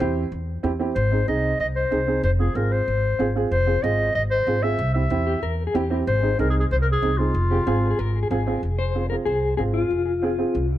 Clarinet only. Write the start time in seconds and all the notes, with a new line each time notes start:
Already playing: C5
0.95 C5
1.28 D#5
1.60 D#5
1.76 C5
2.24 C5
2.40 G#4
2.55 A#4
2.72 C5
3.52 C5
3.83 D#5
4.15 D#5
4.31 C5
4.63 E5
4.94 E5
6.07 C5
6.40 A#4
6.50 G#4
6.60 G#4
6.72 C5
6.82 A#4
6.92 G#4
7.18 F4